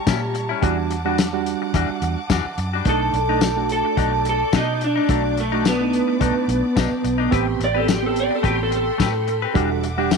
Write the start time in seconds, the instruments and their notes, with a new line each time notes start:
Already playing: clean electric guitar G3, string section A5 A#5 C#6
0.07 clean electric guitar A#2 G3 C#4 E4, fingered electric bass A#2, kick, snare, closed hi-hat, tambourine
0.22 muted clean electric guitar stroke
0.34 muted clean electric guitar stroke, closed hi-hat
0.49 clean electric guitar G3 C#4 E4
0.62 fingered electric bass E2, clean electric guitar E3 G3 D4 F#4, reed electric piano G3 D4 F#4, string section F#5 D6, kick, closed hi-hat
0.78 muted clean electric guitar stroke
0.91 muted clean electric guitar stroke, closed hi-hat
1.05 reed electric piano G3 D4 F#4, clean electric guitar G3 D4 F#4
1.18 muted clean electric guitar stroke, snare, closed hi-hat, tambourine
1.33 reed electric piano G3 D4 F#4
1.46 closed hi-hat
1.62 muted clean electric guitar stroke
1.74 fingered electric bass E2, clean electric guitar E3 G3 D4 F#4, kick, closed hi-hat
1.89 muted fingered electric bass stroke, muted clean electric guitar stroke
2.02 fingered electric bass E2, muted clean electric guitar stroke, closed hi-hat
2.30 fingered electric bass E2, clean electric guitar E3 G3 D4 F#4, kick, snare, closed hi-hat, tambourine
2.45 muted fingered electric bass stroke, muted clean electric guitar stroke
2.58 fingered electric bass F#2, muted clean electric guitar stroke, closed hi-hat
2.73 clean electric guitar G3 D4 F#4
2.85 fingered electric bass B1, clean electric guitar B2 A3 D4 D#4, reed electric piano A3 D4 D#4, string section D5 A5, kick, closed hi-hat
2.89 clean electric guitar A4
3.02 muted clean electric guitar stroke
3.13 fingered electric bass B1, muted clean electric guitar stroke, closed hi-hat
3.28 reed electric piano A3 D4 D#4, clean electric guitar D4 D#4
3.32 clean electric guitar A3
3.41 muted clean electric guitar stroke, snare, closed hi-hat, tambourine
3.56 reed electric piano A3 D4 F#4
3.69 clean electric guitar A4, closed hi-hat
3.85 muted clean electric guitar stroke
3.97 fingered electric bass B1, clean electric guitar B2 A3 D4 D#4, kick, closed hi-hat
4.13 muted clean electric guitar stroke
4.25 muted clean electric guitar stroke, closed hi-hat
4.29 clean electric guitar A4
4.53 clean electric guitar B2 A3 D4 D#4, fingered electric bass B2, kick, snare, closed hi-hat, tambourine
4.69 muted clean electric guitar stroke
4.81 clean electric guitar D4, muted clean electric guitar stroke, closed hi-hat
4.96 clean electric guitar A3 D4 D#4
5.09 fingered electric bass B1, clean electric guitar B2 A3 D4 D#4, reed electric piano A3 D4 F#4, kick, closed hi-hat
5.24 muted clean electric guitar stroke
5.37 clean electric guitar A3, muted clean electric guitar stroke, closed hi-hat
5.52 reed electric piano A3 D4 F#4, clean electric guitar A3 D4 D#4
5.65 clean electric guitar B3, muted clean electric guitar stroke, snare, closed hi-hat, tambourine
5.80 reed electric piano A3 D4 D#4
5.93 closed hi-hat
6.08 muted clean electric guitar stroke
6.20 fingered electric bass B1, clean electric guitar B2 A3 D4 D#4, kick, closed hi-hat
6.36 muted clean electric guitar stroke
6.48 fingered electric bass B1, muted clean electric guitar stroke, closed hi-hat
6.76 fingered electric bass B1, clean electric guitar B2 A3 D4 D#4, kick, snare, closed hi-hat, tambourine
6.92 muted clean electric guitar stroke
7.04 fingered electric bass B1, muted clean electric guitar stroke, closed hi-hat
7.18 clean electric guitar A3 D4 D#4
7.31 fingered electric bass A1, clean electric guitar A3 C4 G4 B4, reed electric piano B3 C4 G4, string section G5 B5 C6, kick, closed hi-hat
7.47 muted clean electric guitar stroke
7.59 fingered electric bass A1, muted clean electric guitar stroke, closed hi-hat
7.64 clean electric guitar D5
7.74 reed electric piano B3 C4 G4, clean electric guitar C4 G4 B4
7.79 clean electric guitar A4
7.87 muted clean electric guitar stroke, snare, closed hi-hat, tambourine
7.92 clean electric guitar G4
8.02 reed electric piano B3 C4 G4, clean electric guitar A4
8.16 clean electric guitar D5, closed hi-hat
8.31 muted clean electric guitar stroke
8.35 clean electric guitar A4
8.43 fingered electric bass A1, clean electric guitar A3 C4 G4 B4, kick, closed hi-hat
8.48 clean electric guitar G4
8.58 muted clean electric guitar stroke
8.63 clean electric guitar A4
8.71 muted clean electric guitar stroke, closed hi-hat
8.75 clean electric guitar A4
8.98 fingered electric bass A2, clean electric guitar A3 C4 G4 B4, kick, snare, closed hi-hat, tambourine
9.14 muted clean electric guitar stroke
9.28 muted clean electric guitar stroke, closed hi-hat
9.42 clean electric guitar C4 G4 B4
9.54 fingered electric bass E1, clean electric guitar E3 G3 D4 F#4, reed electric piano G3 D4 F#4, string section E5 F#5 D6, kick, closed hi-hat
9.71 muted clean electric guitar stroke
9.83 muted clean electric guitar stroke, closed hi-hat
9.98 reed electric piano G3 D4 G4, clean electric guitar G3 D4 F#4
10.11 muted clean electric guitar stroke, snare, closed hi-hat, tambourine